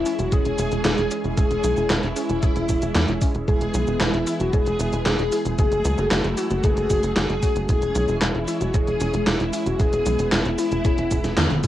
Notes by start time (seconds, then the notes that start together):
Already playing: E3 G#3 C#4 E4
0.06 G#3 C#4 E4 G#4, open hi-hat, cabasa
0.19 E1 F#4, closed hi-hat, cabasa
0.32 E1 G#3 C#4 E4 G#4 C#5, kick, closed hi-hat, cabasa
0.45 E1, closed hi-hat, cabasa
0.58 E1 G#3 C#4 E4 G#4, closed hi-hat, cabasa
0.71 E1 G#3 C#4 E4 G#4, closed hi-hat, cabasa
0.85 E1 G#3 E4 G#4, snare, clap, closed hi-hat, cabasa
0.98 E1, closed hi-hat, cabasa
1.11 G#3 C#4 E4 G#4, open hi-hat, cabasa
1.24 E1, closed hi-hat, cabasa
1.37 E1 G#3 C#4 E4 G#4, kick, closed hi-hat, cabasa
1.51 E1, closed hi-hat, cabasa
1.64 B1 G#3 C#4 E4 G#4, closed hi-hat, cabasa
1.77 E1 G#3 C#4 E4 G#4, cabasa
1.90 E1 G#3 C#4 E4, snare, clap, closed hi-hat, cabasa
2.03 E1, closed hi-hat, cabasa
2.16 G#3 C#4 E4 G#4, open hi-hat, cabasa
2.29 E1, closed hi-hat, cabasa
2.42 E1 G#3 C#4 E4 G#4 C#5, kick, closed hi-hat, cabasa
2.56 E1, closed hi-hat, cabasa
2.69 E1 G#3 C#4 E4 G#4, kick, closed hi-hat, cabasa
2.82 E1 G#3 C#4 E4 G#4, closed hi-hat, cabasa
2.95 E2 G#3 C#4 E4 G#4, snare, clap, closed hi-hat, cabasa
3.08 E1, closed hi-hat, cabasa
3.21 G#3 C#4 E4 G#4, kick, open hi-hat, cabasa
3.35 E1, closed hi-hat, cabasa
3.48 E1 G#3 B3 E4 G#4, kick, closed hi-hat, cabasa
3.61 E1, closed hi-hat, cabasa
3.74 B1 G#3 B3 E4 G#4, closed hi-hat, cabasa
3.87 E1 G#3 B3 E4 G#4, cabasa
4.00 E1 G#3 B3 E4 G#4, snare, clap, closed hi-hat, cabasa
4.14 E1, closed hi-hat, cabasa
4.27 G#3 B3 E4 G#4, open hi-hat, cabasa
4.40 E1 F#4, closed hi-hat, cabasa
4.53 E1 G#3 B3 E4 G#4 C#5, kick, closed hi-hat, cabasa
4.66 E1, closed hi-hat, cabasa
4.79 E1 G#3 B3 E4 G#4, closed hi-hat, cabasa
4.93 E1 G#3 B3 E4 G#4, closed hi-hat, cabasa
5.06 E1 G#3 B3 E4 G#4, snare, clap, closed hi-hat, cabasa
5.19 E1, closed hi-hat, cabasa
5.32 G#3 B3 E4 G#4, open hi-hat, cabasa
5.45 E1, closed hi-hat, cabasa
5.58 F#1 F#3 A3 C#4 F#4 G#4, kick, closed hi-hat, cabasa
5.72 F#1, closed hi-hat, cabasa
5.85 C#2 A3 C#4 F#4 G#4, closed hi-hat, cabasa
5.98 F#1 A3 C#4 F#4 G#4, cabasa
6.11 F#1 A3 C#4 E4 F#4 G#4, snare, clap, closed hi-hat, cabasa
6.24 F#1, closed hi-hat, cabasa
6.37 A3 C#4 F#4 G#4, open hi-hat, cabasa
6.50 F#1 F#4, closed hi-hat, cabasa
6.64 F#1 A3 C#4 F#4 G#4 B4, kick, closed hi-hat, cabasa
6.77 F#1, closed hi-hat, cabasa
6.90 F#1 A3 C#4 F#4 G#4, kick, closed hi-hat, cabasa
7.03 F#1 A3 C#4 F#4 G#4, closed hi-hat, cabasa
7.16 F#1 A3 C#4 F#4 G#4, snare, clap, closed hi-hat, cabasa
7.29 F#1, closed hi-hat, cabasa
7.43 A3 C#4 F#4 G#4, kick, open hi-hat, cabasa
7.56 F#1, closed hi-hat, cabasa
7.69 E1 E3 G#3 C#4 E4 G#4, kick, closed hi-hat, cabasa
7.82 E1, closed hi-hat, cabasa
7.95 B1 G#3 C#4 E4 G#4, closed hi-hat, cabasa
8.08 E1 G#3 C#4 E4 G#4, cabasa
8.22 E1 G#3 C#4 E4 G#4, snare, clap, closed hi-hat, cabasa
8.35 E1, closed hi-hat, cabasa
8.48 G#3 C#4 E4 G#4, open hi-hat, cabasa
8.61 E1 F#4, closed hi-hat, cabasa
8.74 E1 G#3 C#4 E4 G#4 C#5, kick, closed hi-hat, cabasa
8.87 E1, closed hi-hat, cabasa
9.00 E1 G#3 C#4 E4 G#4, closed hi-hat, cabasa
9.14 E1 G#3 C#4 E4 G#4, closed hi-hat, cabasa
9.27 E1 G#3 C#4 E4 G#4, snare, clap, closed hi-hat, cabasa
9.40 E1, closed hi-hat, cabasa
9.53 G#3 C#4 E4 G#4, open hi-hat, cabasa
9.66 E1 F#4, closed hi-hat, cabasa
9.79 E1 G#3 B3 C#4 E4 G#4, kick, closed hi-hat, cabasa
9.93 E1, closed hi-hat, cabasa
10.06 B1 G#3 C#4 E4 G#4, closed hi-hat, cabasa
10.19 E1 G#3 C#4 E4 G#4, closed hi-hat, cabasa
10.32 E1 G#3 C#4 E4 G#4, snare, clap, closed hi-hat, cabasa
10.45 E1, closed hi-hat, cabasa
10.58 G#3 C#4 E4 G#4, open hi-hat, cabasa
10.72 E1, closed hi-hat, cabasa
10.85 E1 G#3 C#4 E4 G#4 C#5, kick, closed hi-hat, cabasa
10.98 E1, closed hi-hat, cabasa
11.11 E1 G#3 C#4 E4 G#4, kick, closed hi-hat, cabasa
11.24 E1 G#3 C#4 E4 G#4, snare, closed hi-hat, cabasa
11.37 E2 G#3 C#4 E4 G#4, snare, clap, closed hi-hat, high tom, cabasa
11.51 E1, closed hi-hat, high tom, cabasa
11.64 G#3 C#4 E4 G#4, kick, open hi-hat, cabasa